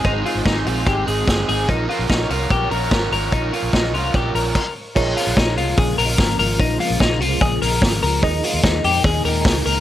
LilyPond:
<<
  \new Staff \with { instrumentName = "Reed electric piano" } { \time 4/4 \key bes \dorian \tempo 4 = 147 r1 | r1 | r1 | <f' aes' bes' des''>1~ |
<f' aes' bes' des''>1 | <ees' aes' bes' ees''>1 | }
  \new Staff \with { instrumentName = "String machine" } { \time 4/4 \key bes \dorian << { <aes' ees'' c'''>1 | <bes' f'' des'''>1~ | <bes' f'' des'''>2. r4 | <des f bes f'>1~ |
<des f bes f'>1 | <bes, ees ees' aes'>1 | } \\ { c''1 | des''1~ | des''2. r4 | aes1~ |
aes1~ | aes1 | } >> }
  \new Staff \with { instrumentName = "Clean electric guitar" } { \time 4/4 \key bes \dorian ees'8 f'8 ees'8 f'8 g'8 aes'4 aes'8 | ees'8 f'8 ees'8 f'8 g'8 bes'4 bes'8 | ees'8 f'8 ees'8 f'8 g'8 bes'4 r8 | ees'8 f'8 ees'8 f'8 aes'8 bes'4 bes'8 |
ees'8 f'8 ees'8 f'8 aes'8 bes'4 bes'8 | ees'8 f'8 ees'8 g'8 aes'8 bes'4 bes'8 | }
  \new Staff \with { instrumentName = "Overdriven electric guitar" } { \time 4/4 \key bes \dorian <aes, ees aes c' ees' aes'>8 <aes c' ees' aes'>4 <aes c' ees' aes'>4 <aes c' ees' aes'>8 <aes c' ees' aes'>8 <aes c' ees' aes'>8 | <bes, f des' f' bes'>8 <f des' f' bes'>4 <f des' f' bes'>4 <f des' f' bes'>8 <f des' f' bes'>8 <f des' f' bes'>8 | <bes, f des' f' bes'>8 <f des' f' bes'>4 <f des' f' bes'>4 <f des' f' bes'>8 r4 | r1 |
r1 | r1 | }
  \new Staff \with { instrumentName = "Fingered electric bass" } { \clef bass \time 4/4 \key bes \dorian aes,,8 r16 aes,,16 aes,,8 bes,,8 aes,,8 aes,,8 g,,8 aes,,8 | bes,,8 r16 bes,,16 bes,,8 c,8 bes,,8 bes,,8 aes,,8 aes,,8 | bes,,8 r16 bes,,16 bes,,8 c,8 bes,,8 bes,,8 r4 | bes,,8 r16 bes,,16 bes,,8 c,8 bes,,8 bes,,8 aes,,8 aes,,8 |
bes,,8 r16 bes,,16 bes,,8 c,8 bes,,8 bes,,8 aes,,8 des,8 | ees,8 r16 ees,16 ees,8 f,8 ees,8 ees,8 des,8 des,8 | }
  \new DrumStaff \with { instrumentName = "Drums" } \drummode { \time 4/4 <hh bd>8 hho8 <hh bd sn>8 hho8 <hh bd>8 hho8 <hh bd sn>8 hho8 | <hh bd>8 hho8 <hh bd sn>8 hho8 <hh bd>8 hho8 <hh bd sn>8 hho8 | <hh bd>8 hho8 <hh bd sn>8 hho8 <hh bd>8 hho8 <cymc bd>4 | <cymc bd>8 <hho hhp>8 <hho bd sn>8 <hho hhp>8 <hho hhp bd>8 <hho hhp>8 <hho hhp bd sn>8 <hho hhp>8 |
<hho hhp bd>8 <hho hhp>8 <hho hhp bd sn>8 <hho hhp>8 <hho hhp bd>8 <hho hhp>8 <hho hhp bd sn>8 <hho hhp>8 | <hho hhp bd>8 <hho hhp>8 <hho hhp bd sn>8 <hho hhp>8 <hho hhp bd>8 <hho hhp>8 <hho hhp bd sn>8 <hho hhp>8 | }
>>